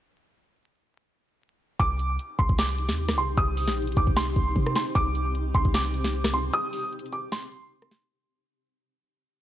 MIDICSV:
0, 0, Header, 1, 5, 480
1, 0, Start_track
1, 0, Key_signature, -3, "minor"
1, 0, Tempo, 394737
1, 2183, Time_signature, 4, 2, 24, 8
1, 11445, End_track
2, 0, Start_track
2, 0, Title_t, "Felt piano"
2, 0, Program_c, 0, 0
2, 2182, Note_on_c, 0, 86, 116
2, 2633, Note_off_c, 0, 86, 0
2, 2901, Note_on_c, 0, 84, 83
2, 3091, Note_off_c, 0, 84, 0
2, 3145, Note_on_c, 0, 86, 86
2, 3820, Note_off_c, 0, 86, 0
2, 3863, Note_on_c, 0, 84, 79
2, 4052, Note_off_c, 0, 84, 0
2, 4104, Note_on_c, 0, 87, 94
2, 4555, Note_off_c, 0, 87, 0
2, 4825, Note_on_c, 0, 86, 76
2, 5014, Note_off_c, 0, 86, 0
2, 5065, Note_on_c, 0, 84, 104
2, 5741, Note_off_c, 0, 84, 0
2, 5785, Note_on_c, 0, 84, 74
2, 5973, Note_off_c, 0, 84, 0
2, 6021, Note_on_c, 0, 86, 113
2, 6473, Note_off_c, 0, 86, 0
2, 6743, Note_on_c, 0, 84, 81
2, 6932, Note_off_c, 0, 84, 0
2, 6985, Note_on_c, 0, 86, 85
2, 7661, Note_off_c, 0, 86, 0
2, 7703, Note_on_c, 0, 84, 75
2, 7892, Note_off_c, 0, 84, 0
2, 7946, Note_on_c, 0, 87, 109
2, 8395, Note_off_c, 0, 87, 0
2, 8664, Note_on_c, 0, 86, 77
2, 8853, Note_off_c, 0, 86, 0
2, 8902, Note_on_c, 0, 84, 90
2, 9813, Note_off_c, 0, 84, 0
2, 11445, End_track
3, 0, Start_track
3, 0, Title_t, "Ambient pad"
3, 0, Program_c, 1, 92
3, 2180, Note_on_c, 1, 63, 74
3, 2180, Note_on_c, 1, 67, 89
3, 2181, Note_on_c, 1, 60, 71
3, 2182, Note_on_c, 1, 48, 79
3, 5983, Note_off_c, 1, 67, 0
3, 6024, Note_on_c, 1, 67, 90
3, 9812, Note_off_c, 1, 63, 0
3, 9813, Note_off_c, 1, 48, 0
3, 9813, Note_off_c, 1, 60, 0
3, 9825, Note_off_c, 1, 67, 0
3, 11445, End_track
4, 0, Start_track
4, 0, Title_t, "808-style bass"
4, 0, Program_c, 2, 38
4, 2183, Note_on_c, 2, 36, 114
4, 2643, Note_off_c, 2, 36, 0
4, 2903, Note_on_c, 2, 36, 105
4, 3025, Note_off_c, 2, 36, 0
4, 3030, Note_on_c, 2, 36, 107
4, 3511, Note_on_c, 2, 39, 99
4, 3529, Note_off_c, 2, 36, 0
4, 3805, Note_on_c, 2, 36, 101
4, 3824, Note_off_c, 2, 39, 0
4, 4087, Note_off_c, 2, 36, 0
4, 4102, Note_on_c, 2, 36, 108
4, 4469, Note_on_c, 2, 34, 94
4, 4488, Note_off_c, 2, 36, 0
4, 4804, Note_off_c, 2, 34, 0
4, 4823, Note_on_c, 2, 36, 105
4, 4942, Note_off_c, 2, 36, 0
4, 4949, Note_on_c, 2, 36, 97
4, 5288, Note_off_c, 2, 36, 0
4, 5303, Note_on_c, 2, 36, 104
4, 5533, Note_off_c, 2, 36, 0
4, 5541, Note_on_c, 2, 48, 104
4, 5772, Note_off_c, 2, 48, 0
4, 6022, Note_on_c, 2, 36, 112
4, 6713, Note_off_c, 2, 36, 0
4, 6743, Note_on_c, 2, 36, 104
4, 6864, Note_off_c, 2, 36, 0
4, 6870, Note_on_c, 2, 36, 104
4, 7899, Note_off_c, 2, 36, 0
4, 11445, End_track
5, 0, Start_track
5, 0, Title_t, "Drums"
5, 2182, Note_on_c, 9, 42, 85
5, 2183, Note_on_c, 9, 36, 114
5, 2304, Note_off_c, 9, 36, 0
5, 2304, Note_off_c, 9, 42, 0
5, 2423, Note_on_c, 9, 42, 92
5, 2544, Note_off_c, 9, 42, 0
5, 2665, Note_on_c, 9, 42, 81
5, 2787, Note_off_c, 9, 42, 0
5, 2903, Note_on_c, 9, 36, 101
5, 2907, Note_on_c, 9, 42, 86
5, 3025, Note_off_c, 9, 36, 0
5, 3028, Note_off_c, 9, 42, 0
5, 3030, Note_on_c, 9, 36, 107
5, 3143, Note_on_c, 9, 38, 114
5, 3144, Note_on_c, 9, 42, 59
5, 3152, Note_off_c, 9, 36, 0
5, 3265, Note_off_c, 9, 38, 0
5, 3265, Note_off_c, 9, 42, 0
5, 3271, Note_on_c, 9, 42, 57
5, 3385, Note_off_c, 9, 42, 0
5, 3385, Note_on_c, 9, 42, 81
5, 3506, Note_off_c, 9, 42, 0
5, 3509, Note_on_c, 9, 38, 70
5, 3623, Note_on_c, 9, 42, 74
5, 3631, Note_off_c, 9, 38, 0
5, 3745, Note_off_c, 9, 42, 0
5, 3751, Note_on_c, 9, 37, 89
5, 3751, Note_on_c, 9, 38, 89
5, 3863, Note_on_c, 9, 42, 84
5, 3873, Note_off_c, 9, 37, 0
5, 3873, Note_off_c, 9, 38, 0
5, 3985, Note_off_c, 9, 42, 0
5, 4102, Note_on_c, 9, 36, 111
5, 4103, Note_on_c, 9, 42, 85
5, 4224, Note_off_c, 9, 36, 0
5, 4225, Note_off_c, 9, 42, 0
5, 4343, Note_on_c, 9, 46, 90
5, 4465, Note_off_c, 9, 46, 0
5, 4470, Note_on_c, 9, 38, 61
5, 4583, Note_on_c, 9, 42, 51
5, 4591, Note_off_c, 9, 38, 0
5, 4646, Note_off_c, 9, 42, 0
5, 4646, Note_on_c, 9, 42, 61
5, 4710, Note_off_c, 9, 42, 0
5, 4710, Note_on_c, 9, 42, 70
5, 4767, Note_off_c, 9, 42, 0
5, 4767, Note_on_c, 9, 42, 82
5, 4823, Note_on_c, 9, 36, 105
5, 4826, Note_off_c, 9, 42, 0
5, 4826, Note_on_c, 9, 42, 85
5, 4944, Note_off_c, 9, 36, 0
5, 4947, Note_off_c, 9, 42, 0
5, 4950, Note_on_c, 9, 36, 105
5, 5064, Note_on_c, 9, 38, 115
5, 5065, Note_on_c, 9, 42, 72
5, 5071, Note_off_c, 9, 36, 0
5, 5185, Note_off_c, 9, 38, 0
5, 5187, Note_off_c, 9, 42, 0
5, 5303, Note_on_c, 9, 36, 98
5, 5303, Note_on_c, 9, 42, 81
5, 5424, Note_off_c, 9, 36, 0
5, 5425, Note_off_c, 9, 42, 0
5, 5542, Note_on_c, 9, 36, 103
5, 5663, Note_off_c, 9, 36, 0
5, 5671, Note_on_c, 9, 37, 89
5, 5782, Note_on_c, 9, 38, 95
5, 5784, Note_on_c, 9, 42, 76
5, 5793, Note_off_c, 9, 37, 0
5, 5904, Note_off_c, 9, 38, 0
5, 5905, Note_off_c, 9, 42, 0
5, 6022, Note_on_c, 9, 36, 112
5, 6022, Note_on_c, 9, 42, 88
5, 6144, Note_off_c, 9, 36, 0
5, 6144, Note_off_c, 9, 42, 0
5, 6263, Note_on_c, 9, 42, 91
5, 6385, Note_off_c, 9, 42, 0
5, 6504, Note_on_c, 9, 42, 79
5, 6626, Note_off_c, 9, 42, 0
5, 6742, Note_on_c, 9, 36, 105
5, 6744, Note_on_c, 9, 42, 87
5, 6864, Note_off_c, 9, 36, 0
5, 6866, Note_off_c, 9, 42, 0
5, 6870, Note_on_c, 9, 36, 101
5, 6983, Note_on_c, 9, 38, 108
5, 6983, Note_on_c, 9, 42, 58
5, 6991, Note_off_c, 9, 36, 0
5, 7104, Note_off_c, 9, 38, 0
5, 7105, Note_off_c, 9, 42, 0
5, 7110, Note_on_c, 9, 42, 54
5, 7222, Note_off_c, 9, 42, 0
5, 7222, Note_on_c, 9, 42, 84
5, 7344, Note_off_c, 9, 42, 0
5, 7348, Note_on_c, 9, 38, 70
5, 7462, Note_on_c, 9, 42, 76
5, 7470, Note_off_c, 9, 38, 0
5, 7584, Note_off_c, 9, 42, 0
5, 7591, Note_on_c, 9, 37, 90
5, 7591, Note_on_c, 9, 38, 91
5, 7704, Note_on_c, 9, 42, 84
5, 7713, Note_off_c, 9, 37, 0
5, 7713, Note_off_c, 9, 38, 0
5, 7825, Note_off_c, 9, 42, 0
5, 7942, Note_on_c, 9, 42, 87
5, 8063, Note_off_c, 9, 42, 0
5, 8182, Note_on_c, 9, 46, 91
5, 8304, Note_off_c, 9, 46, 0
5, 8422, Note_on_c, 9, 42, 66
5, 8502, Note_off_c, 9, 42, 0
5, 8502, Note_on_c, 9, 42, 68
5, 8582, Note_off_c, 9, 42, 0
5, 8582, Note_on_c, 9, 42, 68
5, 8664, Note_off_c, 9, 42, 0
5, 8664, Note_on_c, 9, 42, 89
5, 8786, Note_off_c, 9, 42, 0
5, 8902, Note_on_c, 9, 38, 109
5, 8903, Note_on_c, 9, 42, 75
5, 9024, Note_off_c, 9, 38, 0
5, 9025, Note_off_c, 9, 42, 0
5, 9142, Note_on_c, 9, 42, 80
5, 9263, Note_off_c, 9, 42, 0
5, 9510, Note_on_c, 9, 37, 89
5, 9622, Note_on_c, 9, 38, 90
5, 9622, Note_on_c, 9, 42, 47
5, 9631, Note_off_c, 9, 37, 0
5, 9743, Note_off_c, 9, 38, 0
5, 9744, Note_off_c, 9, 42, 0
5, 9749, Note_on_c, 9, 42, 82
5, 9870, Note_off_c, 9, 42, 0
5, 11445, End_track
0, 0, End_of_file